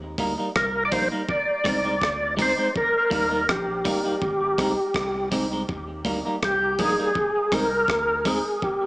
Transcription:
Already playing: sub bass D#2
0.18 sub bass D2, clean electric guitar G3 A#3 D#4, kick, open hi-hat
0.38 clean electric guitar G3 A#3 D#4
0.56 sub bass C2, tonewheel organ A#4, kick, cross-stick
0.85 tonewheel organ D5
0.92 sub bass A#1, clean electric guitar G3 A#3 D#4, tonewheel organ C5, kick, open hi-hat
1.11 clean electric guitar G3 A#3 D#4
1.29 tonewheel organ D5, kick
1.64 sub bass C2, clean electric guitar G#3 C4 D#4, kick, cross-stick, open hi-hat
1.84 clean electric guitar G#3 C4 D#4
2.02 sub bass D2, kick, cross-stick
2.37 clean electric guitar G#3 C4 D#4, kick, open hi-hat
2.42 tonewheel organ C5
2.57 clean electric guitar G#3 C4 D#4
2.76 tonewheel organ A#4, kick
3.10 sub bass D#2, clean electric guitar G3 A#3 D#4, kick, open hi-hat
3.29 clean electric guitar G3 A#3 D#4
3.49 sub bass A#1, tonewheel organ G4, kick, cross-stick
3.85 clean electric guitar G3 A#3 D#4, kick, open hi-hat
4.04 clean electric guitar G3 A#3 D#4
4.22 sub bass G#1, kick
4.58 sub bass C2, clean electric guitar G#3 C4 D#4, kick, cross-stick, open hi-hat
4.94 sub bass C2, kick, cross-stick
5.32 clean electric guitar G#3 C4 D#4, kick, open hi-hat
5.51 clean electric guitar G#3 C4 D#4
5.69 sub bass D#2, kick
6.05 sub bass D2, clean electric guitar G3 A#3 D#4, kick, open hi-hat
6.25 clean electric guitar G3 A#3 D#4
6.43 sub bass C2, tonewheel organ G4, kick, cross-stick
6.79 sub bass A#1, clean electric guitar G3 A#3 D#4, tonewheel organ G#4, kick, open hi-hat
6.98 clean electric guitar G3 A#3 D#4
7.15 kick
7.52 sub bass C2, clean electric guitar G#3 C4 D#4, tonewheel organ A#4, kick, cross-stick, open hi-hat
7.88 sub bass D2, kick, cross-stick
8.25 clean electric guitar G#3 C4 D#4, tonewheel organ G#4, kick, open hi-hat
8.62 tonewheel organ G4, kick

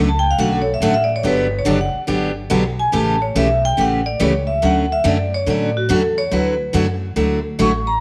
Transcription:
Already playing: upright bass C#2
0.09 vibraphone A5
0.19 vibraphone G5
0.31 vibraphone F5
0.38 upright bass B1, steel-string acoustic guitar D3 F#3 A3 C#4 F#4, vibraphone F#5
0.53 vibraphone A4
0.62 vibraphone C#5
0.74 vibraphone E5
0.80 upright bass A1, steel-string acoustic guitar D3 F#3 A3 C#4 F#4, vibraphone F#5
0.94 vibraphone E5
1.04 vibraphone D5
1.16 vibraphone C#5
1.23 upright bass G1, steel-string acoustic guitar D3 F#3 B3 D4 G4, vibraphone B4
1.59 vibraphone C#5
1.65 upright bass F#1, steel-string acoustic guitar D3 F#3 B3 D4 G4
1.70 vibraphone D5
1.81 vibraphone F#5
1.94 muted upright bass stroke
2.07 upright bass G1, steel-string acoustic guitar D3 F#3 B3 D4 G4
2.50 upright bass B1, steel-string acoustic guitar D3 F#3 B3 D4 G4
2.79 vibraphone G#5
2.92 upright bass A1, steel-string acoustic guitar C#3 E3 A3 C#4 G4, vibraphone A5
3.22 vibraphone C#5
3.35 upright bass B1, steel-string acoustic guitar C#3 E3 A3 C#4 G4, vibraphone E5
3.65 vibraphone G5
3.77 upright bass A1, steel-string acoustic guitar C#3 E3 A3 C#4 G4, vibraphone F#5
4.06 vibraphone D5
4.20 upright bass C#2, steel-string acoustic guitar C#3 E3 A3 C#4 G4, vibraphone C#5
4.47 vibraphone E5
4.62 upright bass D2, steel-string acoustic guitar D3 F#3 A3 C#4 F#4, vibraphone F#5
4.92 vibraphone E5
5.04 upright bass F#2, steel-string acoustic guitar D3 F#3 A3 C#4 F#4, vibraphone D5
5.34 vibraphone C#5
5.46 upright bass A2, steel-string acoustic guitar D3 F#3 A3 C#4 F#4, vibraphone D5
5.77 vibraphone F#4
5.89 upright bass E2, steel-string acoustic guitar D3 F#3 A3 C#4 F#4
5.93 vibraphone A4
6.18 vibraphone C#5
6.31 upright bass D2, steel-string acoustic guitar D3 F#3 A3 E4 F#4, vibraphone B4
6.73 upright bass F#2, steel-string acoustic guitar D3 F#3 A3 E4 F#4
7.16 upright bass D2, steel-string acoustic guitar D3 F#3 A3 E4 F#4
7.59 upright bass A1, steel-string acoustic guitar D3 F#3 A3 E4 F#4, vibraphone C#6
7.87 vibraphone A#5

